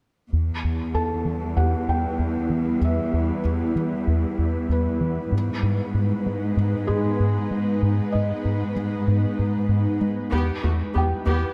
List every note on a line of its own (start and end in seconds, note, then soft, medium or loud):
0.31 5.28 E2 soft
0.31 0.51 E2 medium
0.31 5.28 G3 medium
0.31 5.28 B3 soft
0.31 5.28 E4 soft
0.31 5.28 B4 soft
0.64 0.83 E2 soft
0.94 1.13 E2 soft
0.94 2.78 A4 soft
0.94 2.78 A5 soft
1.25 1.44 E3 soft
1.57 1.76 E2 medium
1.57 3.41 G4 soft
1.57 3.40 F#5 soft
1.89 2.07 E2 soft
1.89 3.72 G5 soft
2.19 2.38 E2 soft
2.50 2.69 E3 soft
2.81 3.00 E2 medium
2.81 4.67 E5 soft
3.14 3.32 E2 soft
3.45 3.64 E2 soft
3.76 3.95 E3 soft
4.07 4.26 E2 medium
4.39 4.57 E2 soft
4.69 4.88 E2 soft
4.69 6.54 B4 soft
5.01 5.20 E3 soft
5.32 10.08 G#2 soft
5.32 5.51 G#2 medium
5.32 10.32 G#3 medium
5.32 10.28 B3 medium
5.32 10.32 D#4 medium
5.32 10.28 B4 soft
5.63 5.82 G#2 soft
5.94 6.13 G#2 soft
6.27 6.45 G#3 medium
6.57 6.76 G#2 medium
6.87 7.08 G#2 soft
6.87 8.71 G#3 soft
6.87 8.71 G#4 soft
7.20 7.39 G#2 soft
7.51 7.70 G#3 soft
7.83 8.01 G#2 medium
8.12 8.33 G#2 soft
8.12 9.96 D#5 soft
8.45 8.64 G#2 soft
8.76 8.95 G#3 soft
9.08 9.26 G#2 medium
9.39 9.58 G#2 soft
9.69 9.88 G#2 soft
10.01 10.20 G#3 soft
10.31 10.40 E2 soft
10.31 10.51 E2 medium
10.31 11.54 G3 medium
10.31 10.61 B3 soft
10.31 11.54 B3 medium
10.31 11.54 E4 medium
10.31 10.61 G4 soft
10.31 11.54 B4 medium
10.63 10.72 E2 soft
10.63 10.83 E2 soft
10.63 10.71 A3 soft
10.63 10.71 F#4 soft
10.94 11.03 E2 soft
10.94 11.14 E2 soft
10.94 11.02 B3 soft
10.94 11.02 G4 soft
10.94 11.54 G4 soft
10.94 11.54 G5 soft
11.26 11.34 E2 soft
11.26 11.45 E2 medium
11.26 11.54 B3 soft
11.26 11.54 G4 soft